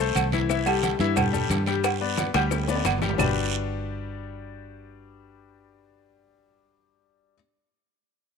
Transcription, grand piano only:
0.00 0.27 A3 medium
0.00 0.27 A4 loud
0.00 0.27 C5 medium
0.33 0.47 E3 medium
0.33 0.47 E4 medium
0.33 0.47 E5 medium
0.49 0.63 E3 medium
0.49 0.63 E4 medium
0.49 0.64 E5 medium
0.66 0.94 G3 medium
0.66 0.94 G4 medium
0.66 0.94 A4 medium
1.00 1.14 E3 medium
1.00 1.14 E4 loud
1.00 1.14 E5 loud
1.16 1.30 G3 medium
1.16 1.30 G4 medium
1.16 1.30 A4 medium
1.33 1.61 G3 medium
1.33 1.61 G4 medium
1.33 1.61 A4 medium
1.67 1.95 G3 medium
1.67 1.95 G4 medium
1.67 1.95 G5 medium
2.01 2.29 B3 medium
2.01 2.29 B4 medium
2.01 2.29 D5 medium
2.35 2.62 G3 medium
2.35 2.63 G4 medium
2.35 2.63 G5 medium
2.69 2.96 B3 medium
2.69 2.96 B4 medium
2.69 2.97 D5 medium
3.02 3.16 G3 medium
3.02 3.16 G4 medium
3.02 3.16 G5 medium
3.18 7.34 G3 loud
3.18 7.34 D4 medium
3.18 7.34 F#4 medium
3.18 7.34 G4 medium
3.18 7.34 B4 medium
3.18 7.34 D5 loud

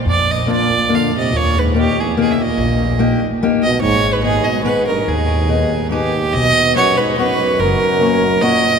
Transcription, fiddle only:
0.08 0.32 D5 loud
0.31 0.49 D#5 medium
0.51 0.96 D5 loud
0.95 1.14 F5 medium
1.18 1.38 D#5 medium
1.36 1.60 C#5 medium
1.59 1.76 B4 medium
1.78 2.01 G4 medium
1.99 2.17 G#4 medium
2.19 2.33 G#4 medium
2.31 2.43 E5 medium
2.42 3.23 D#5 medium
3.62 3.80 D#5 medium
3.81 4.14 C#5 loud
4.13 4.22 B4 medium
4.23 4.46 G#4 medium
4.44 4.63 D#5 medium
4.63 4.85 B4 medium
4.87 5.10 A#4 medium
5.08 5.90 G#4 medium
5.90 6.35 G4 loud
6.33 6.75 D#5 loud
6.75 6.99 C#5 loud
6.97 7.17 B4 medium
7.17 7.61 B4 loud
7.60 8.43 A#4 loud
8.41 8.79 D#5 loud

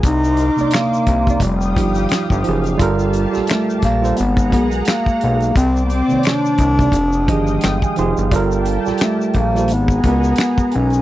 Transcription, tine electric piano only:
0.56 1.15 C3 medium
0.56 1.15 A#3 medium
0.56 0.64 D4 medium
0.61 1.17 D5 medium
0.66 1.19 D#4 medium
1.26 1.42 C3 medium
1.26 1.42 A#3 medium
1.26 1.43 D#4 medium
1.31 1.44 D5 medium
1.76 2.36 F3 medium
1.76 2.36 D#4 medium
1.76 2.37 G4 medium
1.80 2.38 F4 medium
2.44 2.75 F3 medium
2.44 2.75 D#4 medium
2.44 2.76 G4 medium
2.49 2.77 G#4 medium
2.78 3.24 G3 loud
2.78 3.25 F4 loud
2.78 3.25 A4 loud
2.82 3.26 A#4 loud
3.32 3.90 G3 medium
3.32 3.91 F4 medium
3.32 3.91 A4 medium
3.36 3.92 G4 medium
4.00 4.16 G3 medium
4.00 4.17 F4 medium
4.00 4.18 A4 medium
4.05 4.19 C5 medium
4.50 5.54 G#3 medium
4.50 5.55 F#4 medium
4.50 5.56 A#4 medium
4.54 5.56 G#4 medium
6.08 6.66 C3 medium
6.08 6.68 D#3 medium
6.08 6.67 A#3 medium
6.13 6.17 C#5 medium
6.19 6.72 D5 medium
6.79 6.94 C3 medium
6.79 6.94 A#3 medium
6.79 6.95 D#4 medium
6.83 6.96 D5 medium
7.27 7.88 D#3 medium
7.27 7.88 F3 medium
7.27 7.89 G4 medium
7.27 7.61 D#5 medium
7.32 7.90 G#4 medium
7.64 7.81 G5 medium
7.83 7.97 G#5 medium
7.97 8.27 F3 medium
7.97 8.27 D#4 medium
7.97 8.28 G4 medium
7.97 8.30 C6 medium
8.01 8.29 G#4 medium
8.31 8.77 G3 loud
8.31 8.77 F4 loud
8.31 8.78 A4 loud
8.36 8.79 A#4 loud
8.86 9.43 G3 medium
8.86 9.44 F4 medium
8.86 9.45 G4 medium
8.86 9.44 A4 medium
9.55 9.70 G3 medium
9.55 9.70 F4 medium
9.55 9.71 A4 medium
9.59 9.72 C5 medium
10.04 11.02 G#3 medium
10.04 11.02 F#4 medium
10.04 11.02 A#4 medium
10.09 11.02 B4 medium

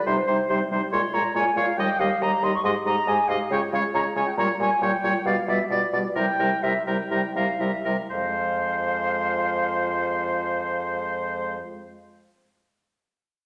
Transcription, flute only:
0.07 0.64 C5 medium
0.92 1.15 C6 loud
1.14 1.35 A#5 medium
1.36 1.58 G#5 medium
1.57 1.79 F5 medium
1.77 2.01 G5 medium
2.00 2.24 F5 medium
2.23 2.45 A#5 medium
2.44 2.54 C6 medium
2.56 2.64 C#6 medium
2.65 2.71 C6 loud
2.87 3.10 A#5 medium
3.08 3.30 G#5 medium
3.28 3.50 F5 medium
3.51 3.57 G5 medium
3.73 3.79 F5 medium
3.95 4.01 A#5 medium
4.16 4.26 G#5 medium
4.26 4.31 G5 medium
4.37 4.43 A#5 medium
4.60 4.83 G#5 medium
4.82 5.28 G5 medium
5.26 5.47 F5 medium
5.48 5.69 E5 medium
5.70 6.15 D5 medium
6.17 6.64 G5 medium
6.63 6.86 E5 medium
6.86 7.10 G5 medium
7.11 7.35 G5 medium
7.35 7.62 F5 medium
7.60 7.88 E5 medium
8.11 11.57 F5 medium

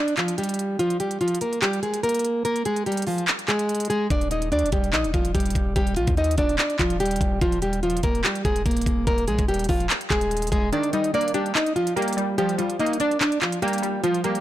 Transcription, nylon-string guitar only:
0.00 0.13 D4 medium
0.00 0.14 D5 medium
0.17 0.35 F3 medium
0.17 0.34 F4 medium
0.38 0.77 G3 medium
0.38 0.77 G4 medium
0.79 0.97 F3 medium
0.79 0.96 F4 loud
1.00 1.17 G3 medium
1.00 1.17 G4 medium
1.21 1.38 F3 medium
1.21 1.37 F4 medium
1.41 1.59 A#3 medium
1.41 1.58 A#4 medium
1.62 1.79 G3 medium
1.62 1.79 G4 medium
1.83 2.00 G#3 medium
1.83 1.99 G#4 medium
2.03 2.43 A#3 medium
2.03 2.42 A#4 medium
2.45 2.62 A#3 medium
2.45 2.62 A#4 loud
2.66 2.83 G#3 medium
2.66 2.82 G#4 medium
2.86 3.03 G3 medium
2.86 3.03 G4 medium
3.07 3.24 F3 medium
3.07 3.24 F4 medium
3.48 3.88 G#3 medium
3.48 3.87 G#4 medium
3.90 4.07 G#3 medium
3.90 4.06 G#4 medium
4.10 4.27 D4 medium
4.10 4.28 D5 medium
4.31 4.48 D#4 medium
4.31 4.48 D#5 medium
4.52 4.68 D4 medium
4.52 4.69 D5 medium
4.72 4.90 G3 medium
4.72 4.89 G4 medium
4.93 5.10 D#4 medium
4.93 5.10 D#5 medium
5.14 5.31 F3 medium
5.14 5.31 F4 medium
5.34 5.74 G3 medium
5.34 5.73 G4 medium
5.76 5.93 G3 medium
5.76 5.93 G4 loud
5.97 6.14 F3 medium
5.97 6.13 F4 medium
6.17 6.34 D#4 medium
6.17 6.34 D#5 medium
6.38 6.55 D4 medium
6.38 6.55 D5 medium
6.59 6.75 D4 medium
6.59 6.76 D5 medium
6.79 6.97 F3 medium
6.79 6.96 F4 medium
7.00 7.39 G3 medium
7.00 7.39 G4 medium
7.42 7.59 F3 medium
7.42 7.58 F4 loud
7.62 7.79 G3 medium
7.62 7.79 G4 medium
7.83 8.00 F3 medium
7.83 8.00 F4 medium
8.04 8.21 A#3 medium
8.04 8.20 A#4 medium
8.24 8.41 G3 medium
8.24 8.41 G4 loud
8.45 8.62 G#3 medium
8.45 8.62 G#4 medium
8.66 9.05 A#3 medium
8.66 9.05 A#4 medium
9.07 9.24 A#3 medium
9.07 9.24 A#4 loud
9.28 9.45 G#3 medium
9.28 9.44 G#4 medium
9.48 9.66 G3 medium
9.48 9.65 G4 medium
9.69 9.86 F3 medium
9.69 9.86 F4 medium
10.11 10.50 G#3 medium
10.11 10.49 G#4 medium
10.52 10.69 G#3 medium
10.52 10.68 G#4 loud
10.72 10.89 D4 medium
10.72 10.90 D5 medium
10.93 11.10 D#4 medium
10.93 11.10 D#5 medium
11.14 11.30 D4 medium
11.14 11.31 D5 medium
11.34 11.52 G3 medium
11.34 11.51 G4 medium
11.55 11.72 D#4 medium
11.55 11.72 D#5 medium
11.76 11.93 F3 medium
11.76 11.93 F4 medium
11.97 12.36 G3 medium
11.97 12.36 G4 medium
12.38 12.55 G3 medium
12.38 12.55 G4 loud
12.59 12.76 F3 medium
12.59 12.75 F4 medium
12.79 12.96 D#4 medium
12.79 12.97 D#5 medium
13.00 13.17 D4 medium
13.00 13.17 D5 medium
13.21 13.38 D4 medium
13.21 13.38 D5 medium
13.42 13.59 F3 medium
13.42 13.58 F4 medium
13.62 14.02 G3 medium
13.62 14.01 G4 medium
14.04 14.21 F3 medium
14.04 14.20 F4 loud
14.24 14.40 G3 medium
14.24 14.40 G4 medium

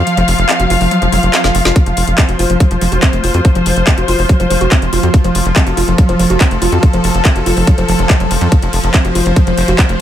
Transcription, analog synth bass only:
0.17 0.24 F1 medium
0.28 0.34 F1 loud
0.38 0.45 F1 medium
0.60 0.66 F1 medium
0.70 0.77 F1 loud
0.81 0.87 F1 medium
1.02 1.08 F1 medium
1.12 1.19 F1 loud
1.23 1.29 F1 medium
1.44 1.51 F1 medium
1.55 1.61 F1 loud
1.65 1.72 F1 medium
1.86 1.93 F1 medium
1.97 2.03 F1 loud
2.08 2.14 F1 medium
2.29 2.35 F1 medium
2.39 2.46 F1 loud
2.50 2.56 F1 medium
2.71 2.77 F1 medium
2.81 2.88 F1 loud
2.92 2.98 F1 loud
3.13 3.20 F1 medium
3.24 3.30 F1 loud
3.34 3.41 F2 loud
3.55 3.62 F1 medium
3.66 3.72 F1 loud
3.76 3.83 F1 medium
3.98 4.04 F1 medium
4.08 4.15 F1 loud
4.19 4.25 F1 medium
4.40 4.46 F1 medium
4.50 4.57 F1 loud
4.61 4.67 F1 loud
4.82 4.89 F1 medium
4.93 4.99 F1 loud
5.03 5.10 F2 medium
5.24 5.31 F1 medium
5.35 5.41 F1 loud
5.46 5.52 F1 medium
5.67 5.73 F1 medium
5.77 5.84 F1 loud
5.88 5.94 F1 loud
6.09 6.15 F1 medium
6.19 6.26 F1 loud
6.30 6.36 F1 loud
6.51 6.58 F1 medium
6.62 6.68 F1 loud
6.72 6.79 F2 medium
6.93 7.00 F1 medium
7.04 7.10 F1 loud
7.15 7.21 F1 medium
7.36 7.42 F1 medium
7.46 7.53 F1 loud
7.57 7.63 F1 medium
7.78 7.84 F1 medium
7.88 7.95 F1 loud
7.99 8.05 F1 loud
8.20 8.27 F1 medium
8.31 8.37 F1 loud
8.41 8.48 F2 medium
8.62 8.69 F1 medium
8.73 8.79 F1 loud
8.84 8.90 F1 medium
9.05 9.11 F1 medium
9.15 9.22 F1 loud
9.26 9.32 F1 medium
9.47 9.53 F1 medium
9.57 9.64 F1 loud
9.68 9.74 F1 medium
9.89 9.96 F1 medium

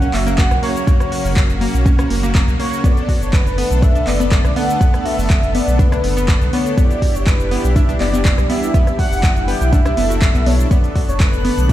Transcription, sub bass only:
0.14 0.44 F#1 medium
0.51 0.59 B1 loud
0.87 0.96 B1 loud
1.25 1.41 F#1 loud
1.50 1.66 F#1 medium
1.74 2.04 B1 medium
2.10 2.41 F#1 medium
2.48 2.56 B1 medium
2.84 2.93 B1 loud
3.21 3.38 F#1 loud
3.46 3.62 F#1 medium
3.71 4.01 B1 medium
4.07 4.38 F#1 medium
4.45 4.52 B1 medium
4.81 4.90 B1 loud
5.18 5.34 F#1 loud
5.43 5.59 F#1 medium
5.67 5.98 B1 medium
6.04 6.35 F#1 medium
6.41 6.49 B1 medium
6.78 6.86 B1 loud
7.15 7.31 F#1 loud
7.40 7.56 F#1 medium
7.64 7.94 B1 medium
8.01 8.31 F#1 medium
8.38 8.46 B1 loud
8.74 8.83 B1 loud
9.12 9.28 F#1 loud
9.36 9.53 F#1 medium
9.61 9.91 B1 medium
9.97 10.28 F#1 medium
10.35 10.65 B1 loud
10.71 10.80 B1 loud
11.08 11.25 F#1 loud
11.33 11.49 F#1 medium
11.58 11.73 B1 medium

